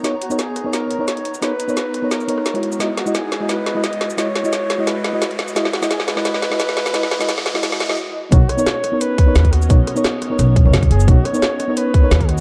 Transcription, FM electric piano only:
\new Staff \with { instrumentName = "FM electric piano" } { \time 4/4 \key b \major \tempo 4 = 174 <b dis' ais' cis''>16 r8 <b dis' ais' cis''>16 r8. <b dis' ais' cis''>4 <b dis' ais' cis''>16 r4 | <b dis' ais' cis''>16 r8 <b dis' ais' cis''>16 r8. <b dis' ais' cis''>8. <b dis' ais' cis''>8. <gis e' fis' cis''>8. | <gis e' fis' dis''>16 r8 <gis e' fis' dis''>16 r8. <gis e' fis' dis''>4 <gis e' fis' dis''>16 r4 | <gis e' fis' dis''>16 r8 <gis e' fis' dis''>16 r8. <gis e' fis' dis''>4 <gis e' fis' dis''>16 r4 |
<gis e' fis' dis''>16 r8 <gis e' fis' dis''>16 r8. <gis e' fis' dis''>4 <gis e' fis' dis''>16 r4 | <gis e' fis' dis''>16 r8 <gis e' fis' dis''>16 r8. <gis e' fis' dis''>4 <gis e' fis' dis''>16 r4 | <b dis' ais' cis''>16 r8 <b dis' ais' cis''>16 r8. <b dis' ais' cis''>4 <b dis' ais' cis''>16 r4 | <b dis' ais' cis''>16 r8 <b dis' ais' cis''>16 r8. <b dis' ais' cis''>4 <b dis' ais' cis''>16 r4 |
<b dis' ais' cis''>16 r8 <b dis' ais' cis''>16 r8. <b dis' ais' cis''>4 <b dis' ais' cis''>16 r4 | }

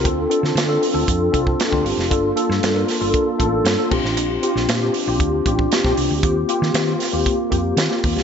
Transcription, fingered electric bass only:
\new Staff \with { instrumentName = "Fingered electric bass" } { \clef bass \time 4/4 \key bes \major \tempo 4 = 116 d,8 r16 d16 d8 r16 d,16 f,8 c,8 r16 d,16 g,,16 f,,16 | g,,8 r16 g,16 g,8 r16 g,,16 r8 a,,8 g,16 r16 bes,,16 a,,16 | bes,,8 r16 bes,,16 bes,8 r16 bes,,16 d,8 a,,8 r16 bes,,16 c,16 d,16 | ees,8 r16 ees16 ees8 r16 ees,16 r8 f,8 ees16 r16 ees,16 c,16 | }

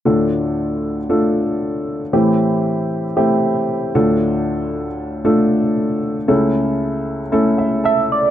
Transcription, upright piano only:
<<
  \new Staff \with { instrumentName = "Upright piano" } { \time 4/4 \key d \minor \tempo 4 = 116 << { r1 | r1 | r1 | r2 r8 e''8 a''4 | } \\ { <a d' f' a'>4.~ <a d' f' a'>16 r16 <a d' f' a'>4.~ <a d' f' a'>16 r16 | <a c' e' g'>4.~ <a c' e' g'>16 r16 <a c' e' g'>4. <a d' f' a'>8~ | <a d' f' a'>4~ <a d' f' a'>16 r8. <a d' f' a'>4.~ <a d' f' a'>16 r16 | <a cis' e' a'>4.~ <a cis' e' a'>16 r16 <a cis' e' a'>4.~ <a cis' e' a'>16 r16 | } >> }
  \new Staff \with { instrumentName = "Upright piano" } { \clef bass \time 4/4 \key d \minor <d, a,>1 | <a, e>2.~ <a, e>8 <d, a,>8~ | <d, a,>2.~ <d, a,>8 r8 | <cis, cis>1 | }
>>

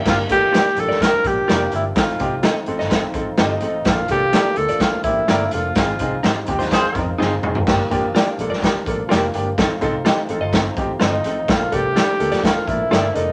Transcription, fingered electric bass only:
\new Staff \with { instrumentName = "Fingered electric bass" } { \clef bass \time 4/4 \key g \minor \tempo 4 = 126 g,,8 a,,8. r16 bes,,16 a,,16 r8 bes,,8 f,,8 g,,8 | a,,8 c,8. r16 a,,16 g,,16 r8 a,,8 g,,8 a,,8 | bes,,8 c,8. r16 d,16 a,,16 r8 bes,,8 g,,8 f,,8 | aes,,8 c,8 aes,8 ees,8 r8 f,8 g,,8 f,,8 |
g,,8 a,,8. r16 bes,,16 a,,16 r8 bes,,8 f,,8 g,,8 | a,,8 c,8. r16 a,,16 g,,8. a,,8 g,,8 a,,8 | bes,,8 c,8. r16 d,16 a,,16 r8 bes,,8 g,,8 f,,8 | }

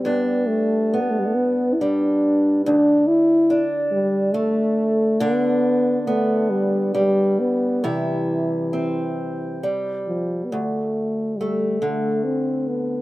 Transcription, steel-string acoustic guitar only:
\new Staff \with { instrumentName = "Steel-string acoustic guitar" } { \clef bass \time 6/8 \key g \mixolydian \tempo 4. = 46 <g, d'>4 b4 g4 | d,4 d'4 a4 | <d d'>4 b4 g4 | <c e'>4 c'4 g4 |
d,4 a8 d4. | }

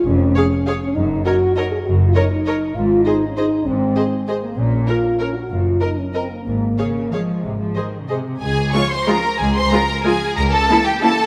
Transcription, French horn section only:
\new Staff \with { instrumentName = "French horn section" } { \time 3/4 \key des \major \tempo 4 = 192 des'2 r8 des'8 | ees'4 ges'4 ees'8 aes'8 | ges'8. f'16 ees'8 ees'4. | f'4 ees'8. des'16 ees'4 |
c'2 r8 bes8 | des'4 f'4 des'8 ges'8 | f'4 ees'8 des'8 c'8 bes8 | bes2 aes4~ |
aes2 r4 | r4 <f des'>4 <f des'>4 | r4 <f des'>4 <f des'>4 | r4 <fes des'>4 <fes des'>4 | }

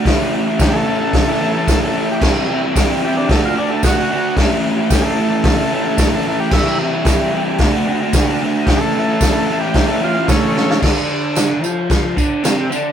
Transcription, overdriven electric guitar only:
\new Staff \with { instrumentName = "Overdriven electric guitar" } { \time 4/4 \key a \mixolydian \tempo 4 = 112 <a, e a cis' e'>8 <e a cis' e'>16 <a cis' e'>16 <a, e a cis' e'>8 <e a cis' e'>16 <a cis' e'>8 <a cis' e'>16 <e a cis' e'>16 <a cis' e'>16 <a, e a cis' e'>16 <a cis' e'>16 <e a cis' e'>8 | <c e g c' e'>8 <e g c' e'>16 <g c' e'>16 <c e g c' e'>8 <e g c' e'>16 <g c' e'>16 <d a d' fis'>16 <a d' fis'>16 <d a d' fis'>16 <a d' fis'>16 <d a d' fis'>16 <a d' fis'>16 <d a d' fis'>8 | <a, e a cis' e'>8 <e a cis' e'>16 <a cis' e'>16 <a, e a cis' e'>8 <e a cis' e'>16 <a cis' e'>8 <a cis' e'>16 <e a cis' e'>16 <a cis' e'>16 <a, e a cis' e'>16 <a cis' e'>16 <e a cis' e'>8 | <c e g c' e'>8 <e g c' e'>16 <g c' e'>16 <c e g c' e'>8 <e g c' e'>16 <g c' e'>16 <d a d' fis'>16 <a d' fis'>16 <d a d' fis'>16 <a d' fis'>16 <d a d' fis'>16 <a d' fis'>16 <d a d' fis'>8 |
<a, e a cis' e'>8 <e a cis' e'>16 <a cis' e'>16 <a, e a cis' e'>8 <e a cis' e'>16 <a cis' e'>8 <a cis' e'>16 <e a cis' e'>16 <a cis' e'>16 <a, e a cis' e'>16 <a cis' e'>16 <e a cis' e'>8 | \key c \lydian <d d'>4. <f f'>4 <d d'>8 <c c'>8 <d d'>8 | }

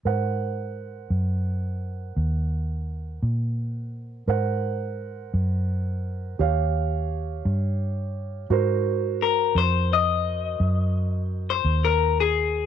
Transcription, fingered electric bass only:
\new Staff \with { instrumentName = "Fingered electric bass" } { \clef bass \time 12/8 \key aes \mixolydian \tempo 4. = 57 aes,4. ges,4. ees,4. bes,4. | aes,4. ges,4. ees,4. g,4. | aes,4. f,4. ges,4. ees,4. | }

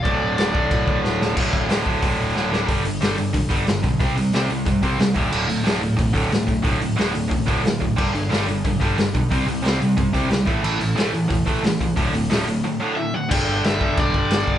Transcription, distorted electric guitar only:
\new Staff \with { instrumentName = "Distorted electric guitar" } { \clef bass \time 4/4 \key c \lydian \tempo 4 = 181 <d, a, d>4. <d, a, d>2~ <d, a, d>8 | <d, a, d>4 <d, a, d>8 <d, a, d>8 <d, a, d>4 <d, a, d>8 <d, a, d>8 | \key g \lydian <g, d g>8 <g, d>8 <g, d g>8 <g, d>8 <g, d>8 <g, d g>8 <g, d>8 <g, d>8 | <c g c'>8 <c g>8 <c g c'>8 <c g>8 <c g>8 <c g c'>8 <c g>8 <d, a, d>8 |
<d, a, d>8 <d, a,>8 <d, a, d>8 <d, a,>8 <d, a,>8 <d, a, d>8 <d, a,>8 <d, a,>8 | <d, a, d>8 <d, a,>8 <d, a, d>8 <d, a,>8 <d, a,>8 <d, a, d>8 <d, a,>8 <d, a,>8 | <g, d g>8 <g, d>8 <g, d g>8 <g, d>8 <g, d>8 <g, d g>8 <g, d>8 <g, d>8 | <c g c'>8 <c g>8 <c g c'>8 <c g>8 <c g>8 <c g c'>8 <c g>8 <a, e a>8 |
<a, e a>8 <a, e>8 <a, e a>8 <a, e>8 <a, e>8 <a, e a>8 <a, e>8 <a, e>8 | <d, a, d>8 <d, a,>8 <d, a, d>8 <d, a,>8 <d, a,>8 <d, a, d>8 <d, a,>8 <d, a,>8 | \key g \major <g, d g>4. <g, d g>2~ <g, d g>8 | }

